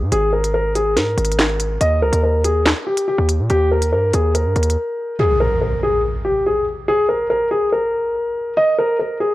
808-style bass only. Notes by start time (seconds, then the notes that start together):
0.01 G#2
0.12 G#1
0.97 G#2
1.18 G#1
1.81 D#2
2.02 C#2
2.13 D#2
3.18 D#2
3.39 A#2
3.50 D#2
3.92 G2
4.14 D#2
4.45 G2
4.56 D#2